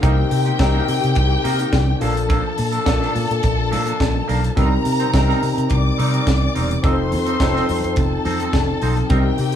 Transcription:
0.02 fingered electric bass C2, tine electric piano C3 C4 D#4 A#4, clean electric guitar A#3 D#4 G4 A#4, string section G4 G5, kick, closed hi-hat
0.16 muted clean electric guitar stroke
0.30 fingered electric bass C3, muted clean electric guitar stroke, open hi-hat
0.45 clean electric guitar A#3 D#4 G4 C5, closed hi-hat
0.58 fingered electric bass C2, tine electric piano C3 C4 D#4 A#4, muted clean electric guitar stroke, kick, snare, closed hi-hat
0.73 clean electric guitar A#3 D#4 G4 A#4
0.87 fingered electric bass C3, muted clean electric guitar stroke, open hi-hat
1.02 fingered electric bass C3, muted clean electric guitar stroke, closed hi-hat
1.15 fingered electric bass C2, muted clean electric guitar stroke, kick, closed hi-hat
1.30 muted clean electric guitar stroke
1.44 fingered electric bass C3, clean electric guitar A#3 D#4 G4 A#4, open hi-hat
1.58 clean electric guitar A#3 D#4 G4 A#4, closed hi-hat
1.73 fingered electric bass C2, kick, snare, closed hi-hat
1.87 muted clean electric guitar stroke
2.00 fingered electric bass A#1, tine electric piano A#2 A#3 D4 A4, clean electric guitar F3 A#3 D4 A4, string section A4 A5, open hi-hat
2.16 muted clean electric guitar stroke, closed hi-hat
2.28 clean electric guitar F3 A#3 D4 A4, kick, closed hi-hat
2.43 muted clean electric guitar stroke
2.57 fingered electric bass A#2, muted clean electric guitar stroke, open hi-hat
2.72 clean electric guitar F3 A#3 D4 A4, closed hi-hat
2.85 fingered electric bass A#1, tine electric piano A#2 A#3 D4 A4, muted clean electric guitar stroke, kick, snare, closed hi-hat
3.01 clean electric guitar F3 A#3 D4 A4, snare
3.14 fingered electric bass A#2, muted clean electric guitar stroke, open hi-hat
3.30 fingered electric bass A#2, muted clean electric guitar stroke, closed hi-hat
3.43 fingered electric bass A#1, muted clean electric guitar stroke, kick, closed hi-hat
3.57 muted clean electric guitar stroke
3.71 fingered electric bass A#2, clean electric guitar F3 A#3 D4 A4, open hi-hat
3.86 clean electric guitar F3 A#3 D4 A4, closed hi-hat
4.00 fingered electric bass A#1, muted clean electric guitar stroke, kick, snare, closed hi-hat
4.14 muted clean electric guitar stroke
4.27 fingered electric bass B1, clean electric guitar F3 A#3 D4 A#4, open hi-hat
4.43 muted clean electric guitar stroke, closed hi-hat
4.56 fingered electric bass C2, tine electric piano C3 C4 D#4 A#4, clean electric guitar G3 C4 D#4 A#4, string section A#4 A#5, kick, closed hi-hat
4.71 muted clean electric guitar stroke
4.85 fingered electric bass C3, muted clean electric guitar stroke, open hi-hat
5.00 clean electric guitar G3 C4 D#4 C5, closed hi-hat
5.13 fingered electric bass C2, tine electric piano C3 C4 D#4 A#4, kick, snare, closed hi-hat
5.28 clean electric guitar G3 C4 D#4 A#4, snare
5.42 fingered electric bass C3, muted clean electric guitar stroke, open hi-hat
5.56 fingered electric bass C3, muted clean electric guitar stroke, closed hi-hat
5.70 fingered electric bass C2, string section D5 D6, muted clean electric guitar stroke, kick, closed hi-hat
5.85 muted clean electric guitar stroke
5.98 fingered electric bass C3, clean electric guitar G3 C4 D#4 A#4, open hi-hat
6.13 clean electric guitar G3 C4 D#4 A#4, closed hi-hat
6.27 fingered electric bass C2, kick, snare, closed hi-hat
6.41 muted clean electric guitar stroke
6.55 fingered electric bass E1, clean electric guitar G3 C4 D#4 A#4, open hi-hat
6.70 muted clean electric guitar stroke, closed hi-hat
6.82 fingered electric bass F1, tine electric piano F3 C4 D#4 A4, clean electric guitar F3 C4 D#4 A4, string section C5 C6, kick, closed hi-hat
6.98 muted clean electric guitar stroke
7.12 fingered electric bass F2, muted clean electric guitar stroke, open hi-hat
7.26 clean electric guitar F3 C4 D#4 A4, closed hi-hat
7.40 fingered electric bass F1, tine electric piano F3 C4 D#4 A4, kick, snare, closed hi-hat
7.54 clean electric guitar F3 C4 D#4 A4, snare
7.68 fingered electric bass F2, muted clean electric guitar stroke, open hi-hat
7.83 fingered electric bass F2, muted clean electric guitar stroke, closed hi-hat
7.96 fingered electric bass F1, string section A4 A5, muted clean electric guitar stroke, kick, closed hi-hat
8.11 muted clean electric guitar stroke
8.25 fingered electric bass F2, clean electric guitar F3 C4 D#4 A4, open hi-hat
8.40 clean electric guitar F3 C4 D#4 A4, closed hi-hat
8.53 fingered electric bass F1, muted clean electric guitar stroke, kick, snare, closed hi-hat
8.68 muted clean electric guitar stroke
8.82 fingered electric bass B1, clean electric guitar F3 C4 D#4 C5, open hi-hat
8.97 muted clean electric guitar stroke, closed hi-hat
9.09 fingered electric bass C2, tine electric piano C3 C4 D4 A#4, clean electric guitar G3 C4 D#4 A#4, string section G4 G5, kick, closed hi-hat
9.17 tine electric piano D#4
9.26 muted clean electric guitar stroke
9.38 fingered electric bass C3, muted clean electric guitar stroke, open hi-hat
9.52 closed hi-hat

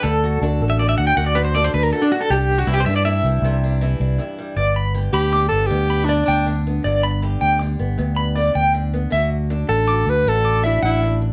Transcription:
0.03 fingered electric bass D2, steel-string acoustic guitar D3, clean electric guitar A4, muted steel-string acoustic guitar stroke
0.24 steel-string acoustic guitar F#4
0.42 fingered electric bass D2, steel-string acoustic guitar D4 A4
0.61 fingered electric bass A1, steel-string acoustic guitar A4
0.70 clean electric guitar E5
0.79 steel-string acoustic guitar A2 A4, clean electric guitar D5
0.89 clean electric guitar E5
0.98 fingered electric bass D2, steel-string acoustic guitar F#4, clean electric guitar F#5
1.07 clean electric guitar G5
1.17 fingered electric bass D2, steel-string acoustic guitar D3 F#4, clean electric guitar F#5
1.26 clean electric guitar D5
1.35 steel-string acoustic guitar A4, clean electric guitar B4
1.45 clean electric guitar C5
1.55 steel-string acoustic guitar D4 A4, clean electric guitar D5
1.64 clean electric guitar C5
1.74 fingered electric bass D2, steel-string acoustic guitar A4, clean electric guitar B4
1.83 clean electric guitar A#4
1.93 steel-string acoustic guitar A2 F#4, clean electric guitar A4
2.02 clean electric guitar D4
2.12 steel-string acoustic guitar D4, clean electric guitar F#4
2.21 clean electric guitar A4
2.30 fingered electric bass C2, steel-string acoustic guitar G3, clean electric guitar G4, muted steel-string acoustic guitar stroke
2.51 steel-string acoustic guitar D4
2.58 clean electric guitar F#4
2.67 fingered electric bass C2, steel-string acoustic guitar E3 D4, clean electric guitar E4
2.74 clean electric guitar G4
2.80 clean electric guitar C5
2.86 fingered electric bass G2, steel-string acoustic guitar D4, clean electric guitar E5
2.96 clean electric guitar D5
3.05 steel-string acoustic guitar G2 E4, clean electric guitar E5
3.23 fingered electric bass C2, steel-string acoustic guitar G3
3.42 fingered electric bass C2, steel-string acoustic guitar C3 G3
3.64 steel-string acoustic guitar D4
3.81 steel-string acoustic guitar E3 E4
4.00 fingered electric bass C2, steel-string acoustic guitar D4
4.18 steel-string acoustic guitar G2 E4
4.38 steel-string acoustic guitar G3
4.56 fingered electric bass G1, steel-string acoustic guitar B3, clean electric guitar D5, muted steel-string acoustic guitar stroke
4.76 clean electric guitar B5
4.94 steel-string acoustic guitar D3 G4
5.13 fingered electric bass D2, alto saxophone G4, clean electric guitar B5
5.33 steel-string acoustic guitar D3 D4, clean electric guitar D6
5.48 fingered electric bass G1, alto saxophone A4
5.52 steel-string acoustic guitar B3
5.67 steel-string acoustic guitar G2, alto saxophone G4
5.71 fingered electric bass D2, steel-string acoustic guitar B3
5.90 clean electric guitar B5
6.05 steel-string acoustic guitar D3, alto saxophone D4, clean electric guitar D5, muted steel-string acoustic guitar stroke
6.25 fingered electric bass D2, alto saxophone D4, clean electric guitar G5
6.46 steel-string acoustic guitar D3 D4
6.67 steel-string acoustic guitar B3
6.84 fingered electric bass G1, steel-string acoustic guitar G2 B3, clean electric guitar D5
7.03 clean electric guitar B5
7.22 steel-string acoustic guitar D3 G4
7.41 fingered electric bass D2, clean electric guitar G5
7.59 steel-string acoustic guitar D3 D4, muted clean electric guitar stroke
7.79 fingered electric bass G1, steel-string acoustic guitar B3
7.98 fingered electric bass D2, steel-string acoustic guitar G2 B3
8.16 clean electric guitar B5
8.36 steel-string acoustic guitar D3, clean electric guitar D5, muted steel-string acoustic guitar stroke
8.55 fingered electric bass D2, clean electric guitar G5
8.73 steel-string acoustic guitar D3 D4
8.94 steel-string acoustic guitar B3
9.10 fingered electric bass D2, steel-string acoustic guitar D3 F#4, clean electric guitar E5
9.50 steel-string acoustic guitar D4 A4
9.69 fingered electric bass A1, alto saxophone A4, muted clean electric guitar stroke
9.88 steel-string acoustic guitar F#4, clean electric guitar D6, muted steel-string acoustic guitar stroke
10.06 fingered electric bass D2, steel-string acoustic guitar F#4, alto saxophone B4
10.26 fingered electric bass A1, steel-string acoustic guitar D3 F#4, alto saxophone A4
10.45 clean electric guitar D6
10.64 steel-string acoustic guitar D4, alto saxophone E4, clean electric guitar E5
10.83 fingered electric bass A1, alto saxophone E4, clean electric guitar F#5
11.02 steel-string acoustic guitar A2 D4
11.21 steel-string acoustic guitar D4

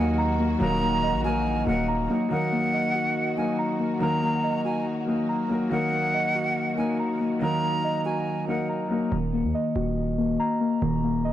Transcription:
Already playing: 808-style bass D#2, synth keys D#3 A#3 F#4 D#5, string section D#3 F#3 A#3 F#4, grand piano F#3 A#3 D#4, flute G#5
0.00 grand piano A#4
0.18 synth keys A#5
0.40 synth keys A#3
0.59 808-style bass D#1, synth keys D#3, grand piano F#3 A#3 D#4 A#4, flute A#5
0.82 synth keys A#3
1.03 synth keys D#5
1.14 808-style bass A#1
1.23 grand piano F#3 A#3 D#4 A#4, synth keys F#4, flute G#5
1.65 808-style bass D#1, grand piano F#3 A#3 D#4 A#4, synth keys A#3, flute F#5
1.88 synth keys A#5
2.07 grand piano F#3 A#3 D#4 A#4, synth keys A#3
2.29 synth keys D#3, string section D#3 F#3 A#3 F#4, grand piano F#3 A#3 D#4, flute F#5
2.33 grand piano A#4
2.52 synth keys A#3
2.74 synth keys D#5
2.95 synth keys F#4
3.35 grand piano F#3 A#3 D#4, synth keys A#3, flute G#5
3.39 grand piano A#4
3.59 synth keys A#5
3.80 synth keys A#3
3.99 synth keys D#3, grand piano F#3 A#3 D#4 A#4, flute A#5
4.23 synth keys A#3
4.44 synth keys D#5
4.65 synth keys F#4, flute G#5
5.05 grand piano F#3 A#3 D#4 A#4, synth keys A#3
5.29 synth keys A#5
5.48 grand piano F#3 A#3 D#4 A#4, synth keys A#3
5.69 synth keys D#3, string section D#3, grand piano F#3 A#3 D#4 A#4, flute F#5
5.93 synth keys A#3
6.14 synth keys D#5
6.35 synth keys F#4
6.75 grand piano F#3 A#3 D#4 A#4, synth keys A#3, flute G#5
6.99 synth keys A#5
7.20 synth keys A#3
7.39 synth keys D#3, grand piano F#3 A#3 D#4 A#4, flute A#5
7.63 synth keys A#3
7.84 synth keys D#5
8.05 synth keys F#4, flute G#5
8.46 grand piano F#3 A#3 D#4 A#4, synth keys A#3, flute F#5
8.69 synth keys A#5
8.88 grand piano F#3 A#3 D#4 A#4, synth keys A#3
9.12 808-style bass D#1, synth keys D#3
9.33 synth keys A#3
9.44 808-style bass D#2
9.54 synth keys D#5
9.76 808-style bass D#1, synth keys F#4
10.18 synth keys A#3
10.40 synth keys A#5
10.61 synth keys A#3
10.82 808-style bass D#1, synth keys D#3
11.04 synth keys A#3
11.25 synth keys D#5

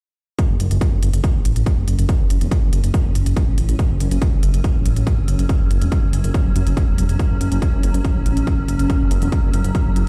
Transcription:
0.39 synth drone F#3 C#4, kick, closed hi-hat
0.50 detuned saw bass F#1
0.60 detuned saw bass F#1, closed hi-hat
0.71 detuned saw bass F#1, closed hi-hat
0.81 kick, closed hi-hat
0.92 detuned saw bass F#1
1.03 detuned saw bass F#1, closed hi-hat
1.13 detuned saw bass F#1, closed hi-hat
1.24 kick, closed hi-hat
1.35 detuned saw bass A1
1.45 detuned saw bass A1, closed hi-hat
1.56 detuned saw bass A1, closed hi-hat
1.66 kick, closed hi-hat
1.77 detuned saw bass F#1
1.88 detuned saw bass F#1, closed hi-hat
1.99 detuned saw bass F#1, closed hi-hat
2.09 kick, closed hi-hat
2.20 detuned saw bass F#1
2.30 detuned saw bass F#1, closed hi-hat
2.41 detuned saw bass E1, closed hi-hat
2.51 kick, closed hi-hat
2.62 detuned saw bass F#1
2.73 detuned saw bass F#1, closed hi-hat
2.84 detuned saw bass F#1, closed hi-hat
2.94 kick, closed hi-hat
3.05 detuned saw bass F#1
3.15 detuned saw bass F#1, closed hi-hat
3.26 detuned saw bass F#1, closed hi-hat
3.37 kick, closed hi-hat
3.48 detuned saw bass A1
3.58 detuned saw bass A1, closed hi-hat
3.69 detuned saw bass A1, closed hi-hat
3.79 kick, closed hi-hat
3.90 detuned saw bass F#1
4.00 detuned saw bass F#1, closed hi-hat
4.11 detuned saw bass F#1, closed hi-hat
4.22 kick, closed hi-hat
4.32 detuned saw bass F#1
4.43 detuned saw bass F#1, closed hi-hat
4.54 detuned saw bass F#1, closed hi-hat
4.64 kick, closed hi-hat
4.75 detuned saw bass A1
4.86 detuned saw bass A1, closed hi-hat
4.96 detuned saw bass A1, closed hi-hat
5.07 kick, closed hi-hat
5.18 detuned saw bass F#1
5.28 detuned saw bass F#1, closed hi-hat
5.39 detuned saw bass F#1, closed hi-hat
5.49 kick, closed hi-hat
5.60 detuned saw bass F#1
5.71 detuned saw bass F#1, closed hi-hat
5.82 detuned saw bass E1, closed hi-hat
5.92 kick, closed hi-hat
6.03 detuned saw bass F#1
6.13 detuned saw bass F#1, closed hi-hat
6.24 detuned saw bass F#1, closed hi-hat
6.34 kick, closed hi-hat
6.45 detuned saw bass F#1
6.56 detuned saw bass F#2, closed hi-hat
6.67 detuned saw bass F#1, closed hi-hat
6.77 kick, closed hi-hat
6.88 detuned saw bass E1
6.98 detuned saw bass E1, closed hi-hat
7.09 detuned saw bass E1, closed hi-hat
7.19 kick, closed hi-hat
7.31 detuned saw bass F#1
7.41 detuned saw bass F#1, closed hi-hat
7.52 detuned saw bass F#1, closed hi-hat
7.62 kick, closed hi-hat
7.73 detuned saw bass F#1
7.83 detuned saw bass F#1, closed hi-hat
7.94 detuned saw bass F#1, closed hi-hat
8.05 kick, closed hi-hat
8.16 detuned saw bass A1
8.26 detuned saw bass A1, closed hi-hat
8.37 detuned saw bass A1, closed hi-hat
8.47 kick, closed hi-hat
8.58 detuned saw bass F#1
8.68 detuned saw bass F#1, closed hi-hat
8.79 detuned saw bass F#1, closed hi-hat
8.90 kick, closed hi-hat
9.01 detuned saw bass F#1
9.11 detuned saw bass F#1, closed hi-hat
9.22 detuned saw bass E1, closed hi-hat
9.32 kick, closed hi-hat
9.43 detuned saw bass F#1
9.53 detuned saw bass F#1, closed hi-hat
9.64 detuned saw bass F#1, closed hi-hat
9.75 kick, closed hi-hat
9.86 detuned saw bass F#1
9.96 detuned saw bass F#1, closed hi-hat

